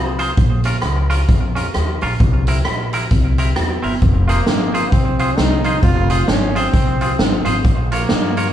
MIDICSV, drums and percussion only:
0, 0, Header, 1, 2, 480
1, 0, Start_track
1, 0, Tempo, 453858
1, 409, Time_signature, 4, 2, 24, 8
1, 9020, End_track
2, 0, Start_track
2, 0, Title_t, "Drums"
2, 199, Note_on_c, 9, 42, 91
2, 304, Note_off_c, 9, 42, 0
2, 391, Note_on_c, 9, 42, 64
2, 397, Note_on_c, 9, 36, 116
2, 497, Note_off_c, 9, 42, 0
2, 502, Note_off_c, 9, 36, 0
2, 673, Note_on_c, 9, 42, 97
2, 778, Note_off_c, 9, 42, 0
2, 864, Note_on_c, 9, 37, 102
2, 868, Note_on_c, 9, 42, 71
2, 970, Note_off_c, 9, 37, 0
2, 973, Note_off_c, 9, 42, 0
2, 1167, Note_on_c, 9, 42, 89
2, 1273, Note_off_c, 9, 42, 0
2, 1357, Note_on_c, 9, 42, 78
2, 1361, Note_on_c, 9, 36, 122
2, 1462, Note_off_c, 9, 42, 0
2, 1467, Note_off_c, 9, 36, 0
2, 1652, Note_on_c, 9, 42, 82
2, 1758, Note_off_c, 9, 42, 0
2, 1844, Note_on_c, 9, 37, 107
2, 1844, Note_on_c, 9, 42, 69
2, 1949, Note_off_c, 9, 37, 0
2, 1950, Note_off_c, 9, 42, 0
2, 2127, Note_on_c, 9, 46, 50
2, 2233, Note_off_c, 9, 46, 0
2, 2327, Note_on_c, 9, 42, 68
2, 2329, Note_on_c, 9, 36, 112
2, 2433, Note_off_c, 9, 42, 0
2, 2435, Note_off_c, 9, 36, 0
2, 2610, Note_on_c, 9, 42, 96
2, 2715, Note_off_c, 9, 42, 0
2, 2801, Note_on_c, 9, 37, 114
2, 2804, Note_on_c, 9, 42, 71
2, 2906, Note_off_c, 9, 37, 0
2, 2910, Note_off_c, 9, 42, 0
2, 3094, Note_on_c, 9, 42, 90
2, 3200, Note_off_c, 9, 42, 0
2, 3284, Note_on_c, 9, 42, 78
2, 3290, Note_on_c, 9, 36, 102
2, 3390, Note_off_c, 9, 42, 0
2, 3396, Note_off_c, 9, 36, 0
2, 3575, Note_on_c, 9, 42, 82
2, 3680, Note_off_c, 9, 42, 0
2, 3766, Note_on_c, 9, 37, 117
2, 3766, Note_on_c, 9, 42, 77
2, 3871, Note_off_c, 9, 37, 0
2, 3872, Note_off_c, 9, 42, 0
2, 4053, Note_on_c, 9, 46, 51
2, 4159, Note_off_c, 9, 46, 0
2, 4248, Note_on_c, 9, 42, 65
2, 4251, Note_on_c, 9, 36, 102
2, 4353, Note_off_c, 9, 42, 0
2, 4357, Note_off_c, 9, 36, 0
2, 4535, Note_on_c, 9, 42, 92
2, 4641, Note_off_c, 9, 42, 0
2, 4722, Note_on_c, 9, 38, 105
2, 4726, Note_on_c, 9, 42, 70
2, 4828, Note_off_c, 9, 38, 0
2, 4832, Note_off_c, 9, 42, 0
2, 5017, Note_on_c, 9, 42, 95
2, 5123, Note_off_c, 9, 42, 0
2, 5206, Note_on_c, 9, 36, 107
2, 5208, Note_on_c, 9, 42, 73
2, 5312, Note_off_c, 9, 36, 0
2, 5313, Note_off_c, 9, 42, 0
2, 5491, Note_on_c, 9, 42, 79
2, 5597, Note_off_c, 9, 42, 0
2, 5685, Note_on_c, 9, 38, 112
2, 5686, Note_on_c, 9, 42, 77
2, 5791, Note_off_c, 9, 38, 0
2, 5792, Note_off_c, 9, 42, 0
2, 5966, Note_on_c, 9, 42, 84
2, 6072, Note_off_c, 9, 42, 0
2, 6160, Note_on_c, 9, 42, 64
2, 6164, Note_on_c, 9, 36, 119
2, 6265, Note_off_c, 9, 42, 0
2, 6270, Note_off_c, 9, 36, 0
2, 6448, Note_on_c, 9, 42, 97
2, 6554, Note_off_c, 9, 42, 0
2, 6641, Note_on_c, 9, 38, 107
2, 6644, Note_on_c, 9, 42, 65
2, 6746, Note_off_c, 9, 38, 0
2, 6750, Note_off_c, 9, 42, 0
2, 6936, Note_on_c, 9, 42, 92
2, 7041, Note_off_c, 9, 42, 0
2, 7123, Note_on_c, 9, 42, 86
2, 7124, Note_on_c, 9, 36, 115
2, 7229, Note_off_c, 9, 36, 0
2, 7229, Note_off_c, 9, 42, 0
2, 7412, Note_on_c, 9, 42, 77
2, 7517, Note_off_c, 9, 42, 0
2, 7605, Note_on_c, 9, 38, 120
2, 7606, Note_on_c, 9, 42, 71
2, 7711, Note_off_c, 9, 38, 0
2, 7712, Note_off_c, 9, 42, 0
2, 7882, Note_on_c, 9, 42, 94
2, 7987, Note_off_c, 9, 42, 0
2, 8083, Note_on_c, 9, 42, 61
2, 8087, Note_on_c, 9, 36, 117
2, 8189, Note_off_c, 9, 42, 0
2, 8193, Note_off_c, 9, 36, 0
2, 8373, Note_on_c, 9, 42, 94
2, 8479, Note_off_c, 9, 42, 0
2, 8556, Note_on_c, 9, 38, 114
2, 8560, Note_on_c, 9, 42, 76
2, 8662, Note_off_c, 9, 38, 0
2, 8666, Note_off_c, 9, 42, 0
2, 8851, Note_on_c, 9, 42, 96
2, 8957, Note_off_c, 9, 42, 0
2, 9020, End_track
0, 0, End_of_file